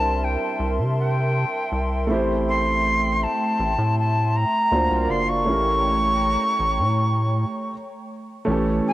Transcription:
Already playing: analog synth bass C2, grand piano G3 C4 D4 E4 A#4, analog synth pad A#4 E5 A5 C6, flute A5
0.24 flute G5
0.60 analog synth bass C2
0.78 analog synth bass C3
0.99 flute G5
1.72 analog synth bass C2
2.07 analog synth bass A1, grand piano A3 C4 E4, analog synth pad A3 G5
2.12 grand piano G4 C5
2.48 flute C6
3.23 flute A5
3.60 analog synth bass A1
3.78 analog synth bass A2
3.99 flute A5
4.36 flute A#5
4.71 analog synth bass D2, grand piano A#3 D4 F4 F#4 C5, analog synth pad A#4 D5 F5
4.91 analog synth bass C2
5.09 analog synth bass F#1, flute C6
5.28 flute C#6
5.45 analog synth bass A1, grand piano A3 C#4 E4, analog synth pad A3 C#5 G5 A#5
5.50 grand piano G4 A#4
6.60 analog synth bass A1
6.78 analog synth bass A2
8.45 analog synth bass A1, grand piano E3 A3 C#4, analog synth pad A3 C#4 G4
8.50 grand piano G4 A4
8.87 flute A5

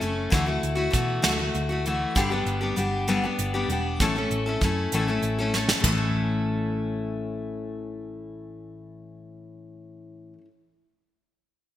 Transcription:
0.01 picked electric bass F#1, steel-string acoustic guitar A3 C#4 E4 A4, closed hi-hat
0.30 picked electric bass D2, steel-string acoustic guitar D3 E3 A3 E4 F#4, kick, closed hi-hat
0.46 steel-string acoustic guitar A3 E4 F#4
0.63 picked electric bass D2, closed hi-hat
0.75 steel-string acoustic guitar A3 E4 F#4
0.91 picked electric bass B2, steel-string acoustic guitar E3 A3 E4 F#4, kick, closed hi-hat
1.22 picked electric bass D2, steel-string acoustic guitar D3 E3 A3 E4 F#4, snare, closed hi-hat
1.39 steel-string acoustic guitar A3 E4 F#4
1.54 picked electric bass D2, closed hi-hat
1.69 steel-string acoustic guitar A3 E4 F#4
1.86 steel-string acoustic guitar E3 A3 E4 F#4, closed hi-hat
2.15 picked electric bass G1, steel-string acoustic guitar G2 D3 G3 B3 D4 G4, kick, closed hi-hat
2.30 steel-string acoustic guitar G3 B3 D4 G4
2.46 picked electric bass G1, closed hi-hat
2.61 steel-string acoustic guitar G3 B3 D4 G4
2.76 picked electric bass G1, steel-string acoustic guitar G3 B3 D4 G4, closed hi-hat
3.08 steel-string acoustic guitar G2 D3 G3 B3 D4 G4, closed hi-hat
3.23 steel-string acoustic guitar G3 B3 D4 G4
3.39 picked electric bass G1, closed hi-hat
3.54 steel-string acoustic guitar G3 B3 D4 G4
3.68 picked electric bass E1, steel-string acoustic guitar G3 B3 D4 G4, closed hi-hat
4.00 picked electric bass A1, steel-string acoustic guitar A2 E3 A3 C#4 E4 A4, kick, closed hi-hat
4.16 steel-string acoustic guitar A3 C#4 E4 A4
4.31 picked electric bass A1, closed hi-hat
4.46 steel-string acoustic guitar A3 C#4 E4 A4
4.61 picked electric bass F#2, steel-string acoustic guitar A3 C#4 E4 A4, kick, closed hi-hat
4.92 picked electric bass A1, steel-string acoustic guitar A2 E3 A3 C#4 E4 A4, closed hi-hat
5.08 steel-string acoustic guitar A3 C#4 E4 A4
5.22 picked electric bass A1, closed hi-hat
5.39 steel-string acoustic guitar A3 C#4 E4 A4
5.54 steel-string acoustic guitar A3 C#4 E4 A4, snare
5.69 snare
5.80 picked electric bass A1, steel-string acoustic guitar A2, kick, floor tom, splash
5.85 steel-string acoustic guitar E3 A3
5.92 steel-string acoustic guitar C#4 E4
5.98 steel-string acoustic guitar A4

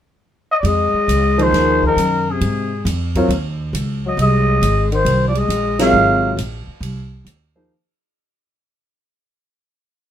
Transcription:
0.51 trumpet D#5
0.60 upright bass F2, trumpet D5
0.65 tenor saxophone G#3, trumpet D#5, ride
0.94 muted upright bass stroke
1.08 upright bass C#2, hi-hat pedal, ride
1.38 grand piano F3 A#3 D#4 G#4 C5, ride
1.42 tenor saxophone D#3, trumpet C5
1.52 upright bass D#2, snare, ride
1.83 trumpet A#4, kick
1.87 tenor saxophone D#3
1.96 upright bass F#2, hi-hat pedal, ride
2.31 tenor saxophone C3, trumpet G#4
2.41 upright bass G#2, ride
2.85 upright bass F2, hi-hat pedal, ride
3.15 grand piano F#3 C4 F4 A#4 C#5, kick, ride
3.29 upright bass D#2, ride
3.73 upright bass C#2, hi-hat pedal, ride
4.06 tenor saxophone F#3, trumpet D#5
4.17 upright bass C2, tenor saxophone G#3, ride
4.21 trumpet D#5
4.61 upright bass G#1, hi-hat pedal, ride
4.92 tenor saxophone D#3, trumpet C5, ride
5.05 upright bass C2, ride
5.28 tenor saxophone F3, trumpet D5
5.35 tenor saxophone G#3, trumpet D#5, ride
5.48 upright bass A#1, hi-hat pedal, ride
5.79 grand piano C3 F#3 F4 A#4 C#5, tenor saxophone G#3, trumpet F5, snare, ride
5.93 upright bass G#1
6.37 upright bass A#1, hi-hat pedal, ride
6.67 muted upright bass stroke
6.81 upright bass C2, ride
7.25 upright bass D#2, hi-hat pedal, ride
7.55 grand piano F3 A#3 D#4 G#4 C5

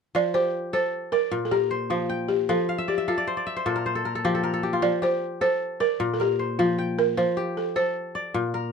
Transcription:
0.15 kora F3, balafon D5
0.34 kora G4, balafon C5
0.73 kora A4, balafon C5
1.12 balafon A#4, kora D5
1.31 kora A#2
1.45 balafon A4
1.51 balafon G4, kora A#4
1.71 kora C5
1.90 kora F3, balafon F4
2.09 kora G5
2.29 balafon G4
2.49 kora F3, balafon A4
2.69 kora F5
2.78 kora E5
2.88 balafon G4, kora D5
2.98 kora E5
3.08 balafon F4, kora A4 F5
3.18 kora D5
3.27 kora C5
3.37 kora D5
3.47 kora E5
3.56 kora C5
3.66 kora A#2 A4
3.76 kora A#4
3.86 kora C5
3.95 kora A4
4.05 kora A#4
4.15 kora A4
4.25 kora F3 G4
4.35 kora A4
4.43 kora A#4
4.54 kora A4
4.63 kora G4
4.73 kora F4
4.82 kora F3, balafon D5
5.02 kora G4, balafon C5
5.41 kora A4, balafon C5
5.80 balafon A#4, kora D5
6.00 kora A#2
6.14 balafon A4
6.20 balafon G4, kora A#4
6.39 kora C5
6.59 kora F3, balafon F4
6.78 kora G5
6.99 balafon A#4
7.17 kora F3, balafon C5
7.37 kora G4
7.57 balafon A4
7.76 kora A4, balafon C5
8.15 kora D5
8.34 kora A#2
8.54 kora A#4

